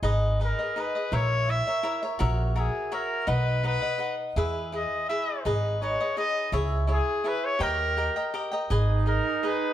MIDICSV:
0, 0, Header, 1, 5, 480
1, 0, Start_track
1, 0, Key_signature, 5, "minor"
1, 0, Tempo, 361446
1, 53, Time_signature, 3, 2, 24, 8
1, 12925, End_track
2, 0, Start_track
2, 0, Title_t, "Cavaquinho"
2, 0, Program_c, 0, 24
2, 36, Note_on_c, 0, 63, 82
2, 41, Note_on_c, 0, 71, 86
2, 43, Note_on_c, 0, 68, 80
2, 57, Note_on_c, 0, 75, 77
2, 509, Note_off_c, 0, 63, 0
2, 525, Note_on_c, 0, 63, 38
2, 526, Note_off_c, 0, 68, 0
2, 527, Note_off_c, 0, 71, 0
2, 537, Note_off_c, 0, 75, 0
2, 542, Note_on_c, 0, 68, 48
2, 543, Note_on_c, 0, 71, 57
2, 553, Note_on_c, 0, 75, 61
2, 763, Note_off_c, 0, 75, 0
2, 775, Note_off_c, 0, 71, 0
2, 779, Note_on_c, 0, 75, 39
2, 785, Note_off_c, 0, 63, 0
2, 786, Note_off_c, 0, 68, 0
2, 791, Note_on_c, 0, 71, 43
2, 801, Note_on_c, 0, 68, 35
2, 1004, Note_off_c, 0, 68, 0
2, 1008, Note_on_c, 0, 63, 54
2, 1014, Note_off_c, 0, 75, 0
2, 1015, Note_off_c, 0, 71, 0
2, 1020, Note_on_c, 0, 68, 56
2, 1030, Note_on_c, 0, 75, 62
2, 1031, Note_on_c, 0, 71, 57
2, 1246, Note_off_c, 0, 75, 0
2, 1259, Note_off_c, 0, 71, 0
2, 1262, Note_on_c, 0, 75, 36
2, 1265, Note_off_c, 0, 68, 0
2, 1268, Note_off_c, 0, 63, 0
2, 1275, Note_on_c, 0, 71, 43
2, 1281, Note_on_c, 0, 68, 40
2, 1486, Note_on_c, 0, 64, 63
2, 1490, Note_off_c, 0, 68, 0
2, 1492, Note_off_c, 0, 71, 0
2, 1496, Note_on_c, 0, 70, 80
2, 1497, Note_off_c, 0, 75, 0
2, 1498, Note_on_c, 0, 73, 75
2, 1502, Note_on_c, 0, 76, 79
2, 1950, Note_off_c, 0, 64, 0
2, 1957, Note_off_c, 0, 70, 0
2, 1965, Note_off_c, 0, 73, 0
2, 1966, Note_on_c, 0, 64, 52
2, 1971, Note_off_c, 0, 76, 0
2, 1973, Note_on_c, 0, 70, 47
2, 1981, Note_on_c, 0, 73, 48
2, 1987, Note_on_c, 0, 76, 60
2, 2201, Note_off_c, 0, 76, 0
2, 2212, Note_off_c, 0, 73, 0
2, 2217, Note_on_c, 0, 76, 47
2, 2220, Note_off_c, 0, 70, 0
2, 2223, Note_off_c, 0, 64, 0
2, 2228, Note_on_c, 0, 73, 49
2, 2236, Note_on_c, 0, 70, 41
2, 2420, Note_off_c, 0, 70, 0
2, 2429, Note_off_c, 0, 73, 0
2, 2432, Note_on_c, 0, 64, 66
2, 2436, Note_off_c, 0, 76, 0
2, 2436, Note_on_c, 0, 70, 60
2, 2445, Note_on_c, 0, 73, 70
2, 2452, Note_on_c, 0, 76, 66
2, 2673, Note_off_c, 0, 76, 0
2, 2679, Note_off_c, 0, 73, 0
2, 2689, Note_on_c, 0, 76, 58
2, 2692, Note_off_c, 0, 64, 0
2, 2694, Note_off_c, 0, 70, 0
2, 2695, Note_on_c, 0, 73, 49
2, 2714, Note_on_c, 0, 70, 38
2, 2901, Note_off_c, 0, 70, 0
2, 2907, Note_on_c, 0, 66, 94
2, 2909, Note_off_c, 0, 73, 0
2, 2910, Note_off_c, 0, 76, 0
2, 2917, Note_on_c, 0, 70, 90
2, 2925, Note_on_c, 0, 73, 88
2, 2926, Note_on_c, 0, 76, 95
2, 3377, Note_off_c, 0, 66, 0
2, 3381, Note_off_c, 0, 70, 0
2, 3390, Note_off_c, 0, 73, 0
2, 3393, Note_on_c, 0, 66, 56
2, 3397, Note_on_c, 0, 70, 60
2, 3400, Note_off_c, 0, 76, 0
2, 3406, Note_on_c, 0, 73, 49
2, 3416, Note_on_c, 0, 76, 56
2, 3856, Note_off_c, 0, 66, 0
2, 3860, Note_off_c, 0, 70, 0
2, 3864, Note_off_c, 0, 73, 0
2, 3870, Note_off_c, 0, 76, 0
2, 3872, Note_on_c, 0, 66, 68
2, 3876, Note_on_c, 0, 70, 64
2, 3880, Note_on_c, 0, 73, 62
2, 3886, Note_on_c, 0, 76, 69
2, 4334, Note_off_c, 0, 66, 0
2, 4340, Note_off_c, 0, 70, 0
2, 4340, Note_on_c, 0, 63, 79
2, 4344, Note_off_c, 0, 76, 0
2, 4346, Note_on_c, 0, 71, 58
2, 4347, Note_off_c, 0, 73, 0
2, 4350, Note_on_c, 0, 78, 64
2, 4353, Note_on_c, 0, 75, 80
2, 4810, Note_off_c, 0, 63, 0
2, 4823, Note_off_c, 0, 78, 0
2, 4826, Note_on_c, 0, 63, 52
2, 4827, Note_off_c, 0, 71, 0
2, 4830, Note_off_c, 0, 75, 0
2, 4832, Note_on_c, 0, 71, 47
2, 4839, Note_on_c, 0, 78, 58
2, 4846, Note_on_c, 0, 75, 57
2, 5047, Note_off_c, 0, 78, 0
2, 5057, Note_off_c, 0, 75, 0
2, 5062, Note_on_c, 0, 78, 40
2, 5063, Note_off_c, 0, 71, 0
2, 5073, Note_on_c, 0, 75, 42
2, 5079, Note_on_c, 0, 71, 38
2, 5083, Note_off_c, 0, 63, 0
2, 5280, Note_off_c, 0, 71, 0
2, 5284, Note_off_c, 0, 75, 0
2, 5284, Note_on_c, 0, 63, 54
2, 5293, Note_off_c, 0, 78, 0
2, 5296, Note_on_c, 0, 71, 53
2, 5300, Note_on_c, 0, 75, 60
2, 5309, Note_on_c, 0, 78, 56
2, 5787, Note_off_c, 0, 63, 0
2, 5795, Note_off_c, 0, 75, 0
2, 5795, Note_on_c, 0, 64, 75
2, 5796, Note_off_c, 0, 71, 0
2, 5800, Note_off_c, 0, 78, 0
2, 5801, Note_on_c, 0, 68, 77
2, 5812, Note_on_c, 0, 71, 86
2, 5813, Note_on_c, 0, 76, 86
2, 6257, Note_off_c, 0, 64, 0
2, 6273, Note_off_c, 0, 71, 0
2, 6273, Note_on_c, 0, 64, 46
2, 6281, Note_off_c, 0, 68, 0
2, 6286, Note_on_c, 0, 68, 49
2, 6289, Note_on_c, 0, 71, 51
2, 6296, Note_off_c, 0, 76, 0
2, 6749, Note_off_c, 0, 64, 0
2, 6765, Note_on_c, 0, 64, 56
2, 6767, Note_off_c, 0, 71, 0
2, 6768, Note_off_c, 0, 68, 0
2, 6773, Note_on_c, 0, 68, 56
2, 6783, Note_on_c, 0, 71, 59
2, 6786, Note_on_c, 0, 76, 63
2, 7233, Note_off_c, 0, 64, 0
2, 7238, Note_off_c, 0, 71, 0
2, 7239, Note_on_c, 0, 63, 67
2, 7241, Note_off_c, 0, 68, 0
2, 7247, Note_on_c, 0, 68, 74
2, 7248, Note_off_c, 0, 76, 0
2, 7254, Note_on_c, 0, 71, 79
2, 7254, Note_on_c, 0, 75, 75
2, 7708, Note_off_c, 0, 63, 0
2, 7716, Note_off_c, 0, 68, 0
2, 7724, Note_off_c, 0, 71, 0
2, 7724, Note_on_c, 0, 63, 49
2, 7730, Note_off_c, 0, 75, 0
2, 7732, Note_on_c, 0, 68, 50
2, 7740, Note_on_c, 0, 71, 64
2, 7746, Note_on_c, 0, 75, 56
2, 7956, Note_off_c, 0, 75, 0
2, 7961, Note_off_c, 0, 71, 0
2, 7972, Note_on_c, 0, 75, 47
2, 7973, Note_off_c, 0, 68, 0
2, 7977, Note_on_c, 0, 71, 41
2, 7978, Note_off_c, 0, 63, 0
2, 7989, Note_on_c, 0, 68, 39
2, 8179, Note_off_c, 0, 68, 0
2, 8186, Note_on_c, 0, 63, 52
2, 8190, Note_off_c, 0, 71, 0
2, 8190, Note_off_c, 0, 75, 0
2, 8195, Note_on_c, 0, 68, 52
2, 8206, Note_on_c, 0, 71, 54
2, 8206, Note_on_c, 0, 75, 63
2, 8658, Note_off_c, 0, 68, 0
2, 8659, Note_off_c, 0, 63, 0
2, 8664, Note_on_c, 0, 64, 70
2, 8671, Note_off_c, 0, 71, 0
2, 8674, Note_off_c, 0, 75, 0
2, 8674, Note_on_c, 0, 68, 75
2, 8676, Note_on_c, 0, 73, 84
2, 8679, Note_on_c, 0, 76, 88
2, 9111, Note_off_c, 0, 64, 0
2, 9123, Note_off_c, 0, 68, 0
2, 9127, Note_on_c, 0, 64, 58
2, 9129, Note_off_c, 0, 73, 0
2, 9137, Note_off_c, 0, 76, 0
2, 9139, Note_on_c, 0, 68, 50
2, 9144, Note_on_c, 0, 73, 55
2, 9153, Note_on_c, 0, 76, 57
2, 9599, Note_off_c, 0, 64, 0
2, 9609, Note_off_c, 0, 68, 0
2, 9614, Note_on_c, 0, 64, 50
2, 9619, Note_off_c, 0, 73, 0
2, 9625, Note_on_c, 0, 68, 49
2, 9626, Note_off_c, 0, 76, 0
2, 9635, Note_on_c, 0, 73, 65
2, 9642, Note_on_c, 0, 76, 58
2, 10072, Note_off_c, 0, 64, 0
2, 10078, Note_on_c, 0, 67, 62
2, 10088, Note_off_c, 0, 73, 0
2, 10089, Note_off_c, 0, 68, 0
2, 10093, Note_on_c, 0, 75, 70
2, 10094, Note_on_c, 0, 70, 71
2, 10096, Note_off_c, 0, 76, 0
2, 10101, Note_on_c, 0, 79, 91
2, 10563, Note_off_c, 0, 67, 0
2, 10574, Note_off_c, 0, 70, 0
2, 10578, Note_off_c, 0, 75, 0
2, 10579, Note_on_c, 0, 67, 47
2, 10582, Note_off_c, 0, 79, 0
2, 10590, Note_on_c, 0, 70, 51
2, 10597, Note_on_c, 0, 75, 57
2, 10599, Note_on_c, 0, 79, 59
2, 10819, Note_off_c, 0, 79, 0
2, 10825, Note_off_c, 0, 75, 0
2, 10834, Note_off_c, 0, 67, 0
2, 10835, Note_on_c, 0, 79, 52
2, 10840, Note_off_c, 0, 70, 0
2, 10841, Note_on_c, 0, 75, 50
2, 10853, Note_on_c, 0, 70, 43
2, 11056, Note_off_c, 0, 70, 0
2, 11065, Note_off_c, 0, 75, 0
2, 11070, Note_off_c, 0, 79, 0
2, 11071, Note_on_c, 0, 67, 60
2, 11072, Note_on_c, 0, 70, 68
2, 11081, Note_on_c, 0, 75, 71
2, 11091, Note_on_c, 0, 79, 59
2, 11291, Note_off_c, 0, 79, 0
2, 11307, Note_on_c, 0, 79, 48
2, 11311, Note_off_c, 0, 70, 0
2, 11311, Note_off_c, 0, 75, 0
2, 11326, Note_off_c, 0, 67, 0
2, 11327, Note_on_c, 0, 70, 40
2, 11327, Note_on_c, 0, 75, 48
2, 11545, Note_off_c, 0, 75, 0
2, 11553, Note_off_c, 0, 79, 0
2, 11555, Note_on_c, 0, 68, 72
2, 11559, Note_off_c, 0, 70, 0
2, 11561, Note_on_c, 0, 75, 86
2, 11564, Note_on_c, 0, 71, 82
2, 11575, Note_on_c, 0, 80, 93
2, 12012, Note_off_c, 0, 68, 0
2, 12022, Note_off_c, 0, 71, 0
2, 12028, Note_on_c, 0, 68, 51
2, 12029, Note_off_c, 0, 75, 0
2, 12033, Note_off_c, 0, 80, 0
2, 12045, Note_on_c, 0, 75, 50
2, 12049, Note_on_c, 0, 80, 52
2, 12506, Note_off_c, 0, 68, 0
2, 12518, Note_off_c, 0, 75, 0
2, 12522, Note_on_c, 0, 68, 56
2, 12530, Note_off_c, 0, 80, 0
2, 12532, Note_on_c, 0, 71, 59
2, 12534, Note_on_c, 0, 75, 58
2, 12545, Note_on_c, 0, 80, 59
2, 12925, Note_off_c, 0, 68, 0
2, 12925, Note_off_c, 0, 71, 0
2, 12925, Note_off_c, 0, 75, 0
2, 12925, Note_off_c, 0, 80, 0
2, 12925, End_track
3, 0, Start_track
3, 0, Title_t, "Trumpet"
3, 0, Program_c, 1, 56
3, 588, Note_on_c, 1, 70, 74
3, 1064, Note_on_c, 1, 71, 79
3, 1084, Note_off_c, 1, 70, 0
3, 1513, Note_on_c, 1, 73, 98
3, 1533, Note_off_c, 1, 71, 0
3, 1990, Note_on_c, 1, 76, 103
3, 2010, Note_off_c, 1, 73, 0
3, 2708, Note_off_c, 1, 76, 0
3, 3435, Note_on_c, 1, 68, 74
3, 3864, Note_off_c, 1, 68, 0
3, 3901, Note_on_c, 1, 70, 85
3, 4361, Note_on_c, 1, 71, 102
3, 4381, Note_off_c, 1, 70, 0
3, 4840, Note_off_c, 1, 71, 0
3, 4875, Note_on_c, 1, 71, 98
3, 5540, Note_off_c, 1, 71, 0
3, 6318, Note_on_c, 1, 75, 73
3, 6752, Note_off_c, 1, 75, 0
3, 6760, Note_on_c, 1, 76, 81
3, 7216, Note_off_c, 1, 76, 0
3, 7732, Note_on_c, 1, 73, 76
3, 8176, Note_off_c, 1, 73, 0
3, 8203, Note_on_c, 1, 75, 93
3, 8647, Note_off_c, 1, 75, 0
3, 9196, Note_on_c, 1, 68, 91
3, 9659, Note_on_c, 1, 71, 81
3, 9679, Note_off_c, 1, 68, 0
3, 9891, Note_on_c, 1, 73, 97
3, 9910, Note_off_c, 1, 71, 0
3, 10119, Note_on_c, 1, 70, 91
3, 10139, Note_off_c, 1, 73, 0
3, 11080, Note_off_c, 1, 70, 0
3, 12059, Note_on_c, 1, 70, 78
3, 12558, Note_on_c, 1, 71, 75
3, 12577, Note_off_c, 1, 70, 0
3, 12925, Note_off_c, 1, 71, 0
3, 12925, End_track
4, 0, Start_track
4, 0, Title_t, "Trumpet"
4, 0, Program_c, 2, 56
4, 11598, Note_on_c, 2, 63, 76
4, 12925, Note_off_c, 2, 63, 0
4, 12925, End_track
5, 0, Start_track
5, 0, Title_t, "Upright bass"
5, 0, Program_c, 3, 32
5, 33, Note_on_c, 3, 32, 76
5, 672, Note_off_c, 3, 32, 0
5, 1486, Note_on_c, 3, 34, 88
5, 2112, Note_off_c, 3, 34, 0
5, 2928, Note_on_c, 3, 34, 97
5, 3547, Note_off_c, 3, 34, 0
5, 4350, Note_on_c, 3, 35, 79
5, 4978, Note_off_c, 3, 35, 0
5, 5792, Note_on_c, 3, 40, 81
5, 6427, Note_off_c, 3, 40, 0
5, 7243, Note_on_c, 3, 32, 67
5, 7868, Note_off_c, 3, 32, 0
5, 8661, Note_on_c, 3, 37, 84
5, 9282, Note_off_c, 3, 37, 0
5, 10092, Note_on_c, 3, 39, 77
5, 10725, Note_off_c, 3, 39, 0
5, 11557, Note_on_c, 3, 32, 82
5, 12189, Note_off_c, 3, 32, 0
5, 12925, End_track
0, 0, End_of_file